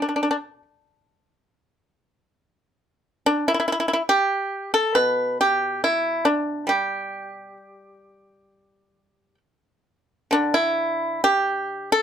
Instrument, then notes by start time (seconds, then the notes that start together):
pipa
Already playing: B2
0.02 D4
0.09 D4
0.16 D4
0.23 D4
0.31 D4
3.26 D4
3.48 E4
3.54 E4
3.60 E4
3.68 E4
3.72 E4
3.80 E4
3.88 E4
3.93 E4
4.09 G4
4.74 A4
4.95 B2 B4
5.41 G4
5.84 E4
6.25 D4
6.67 G3 G4
10.31 D3 D4
10.54 E4
11.24 G4
11.92 A4